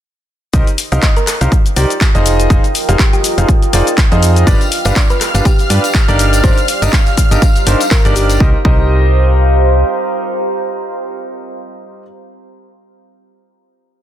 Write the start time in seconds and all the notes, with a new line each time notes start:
0.53 C2 D#4 F4 G4 A#4 C5 D#5, kick, closed hi-hat, shaker
0.67 closed hi-hat, shaker
0.76 A#4, open hi-hat, shaker
0.92 C2 D#4 G4 A#4 C5 D#5 F5, closed hi-hat, shaker
1.03 D#5, kick, clap, closed hi-hat, shaker
1.16 A#4, closed hi-hat, shaker
1.27 G5, cross-stick, clap, open hi-hat, shaker
1.41 C2 D#4 G4 A#4 C5 F5, closed hi-hat, shaker
1.52 kick, closed hi-hat, shaker
1.66 closed hi-hat, shaker
1.76 C2 D#4 G4 A#4 C5 D5, open hi-hat, shaker
1.90 closed hi-hat, shaker
2.01 kick, clap, closed hi-hat, shaker
2.15 F1 D#4 F4 G#4 C5 D#5, closed hi-hat, shaker
2.26 open hi-hat, shaker
2.40 closed hi-hat, shaker
2.50 F1 D#4 F4 G#4 C5 D#5, kick, closed hi-hat, shaker
2.64 closed hi-hat, shaker
2.75 open hi-hat, shaker
2.89 F1 D#4 F4 G4 G#4 C5 F5, closed hi-hat, shaker
2.99 G4, kick, clap, closed hi-hat, shaker
3.13 G4, closed hi-hat, shaker
3.24 open hi-hat, shaker
3.38 F1 D#4 F4 G#4 C5 F5, closed hi-hat, shaker
3.49 kick, closed hi-hat, shaker
3.62 closed hi-hat, shaker
3.73 F1 D#4 F4 G#4 C5 D5, open hi-hat, shaker
3.87 closed hi-hat, shaker
3.98 kick, clap, closed hi-hat, shaker
4.12 F2 D#4 F4 G#4 C5 D#5, closed hi-hat, shaker
4.23 open hi-hat, shaker
4.36 closed hi-hat, shaker
4.47 G1 D4 F4 G4 B4 D5 F5 F6, kick, closed hi-hat, tambourine, shaker
4.61 B4, closed hi-hat, tambourine, shaker
4.72 open hi-hat, shaker
4.85 G1 D4 F4 G4 B4 D5 F5, closed hi-hat, tambourine, shaker
4.96 D5 F5, kick, clap, closed hi-hat, tambourine, shaker
5.10 B4, closed hi-hat, tambourine, shaker
5.14 D5
5.21 cross-stick, clap, open hi-hat, shaker
5.34 G1 D4 F4 G4 B4 F5, closed hi-hat, tambourine, shaker
5.45 G4, kick, closed hi-hat, tambourine, shaker
5.59 closed hi-hat, tambourine, shaker
5.70 G2 D4 F4 G4 B4 D5, open hi-hat, shaker
5.84 closed hi-hat, tambourine, shaker
5.95 kick, clap, closed hi-hat, shaker
6.08 G1 D4 D#4 G4 A#4 D5, closed hi-hat, tambourine, shaker
6.19 open hi-hat, shaker
6.33 closed hi-hat, tambourine, shaker
6.43 G1 D4 D#4 G4 A#4 C5 D5, kick, closed hi-hat, tambourine, shaker
6.50 C5
6.57 closed hi-hat, tambourine, shaker
6.68 open hi-hat, shaker
6.82 G1 D4 D#4 G4 A#4 D#5, closed hi-hat, tambourine, shaker
6.93 kick, clap, closed hi-hat, tambourine, shaker
7.06 closed hi-hat, tambourine, shaker
7.17 A#5, kick, open hi-hat, shaker
7.31 G1 D4 D#4 G4 A#4 D#5, closed hi-hat, tambourine, shaker
7.42 kick, closed hi-hat, tambourine, shaker
7.55 closed hi-hat, tambourine, shaker
7.67 G1 D4 D#4 G4 A#4 C5, open hi-hat, shaker
7.80 closed hi-hat, tambourine, shaker
7.91 A#4, kick, clap, closed hi-hat, tambourine, shaker
8.05 G1 D4 D#4 G4 A#4 D5, closed hi-hat, tambourine, shaker
8.16 G4, open hi-hat, shaker
8.29 closed hi-hat, tambourine, shaker
8.40 C2 D#4 G4 A#4 C5 D#5, kick
8.49 C5
8.56 F5
8.63 C2 D#4 G4 A#4 C5 D#5 A#5, kick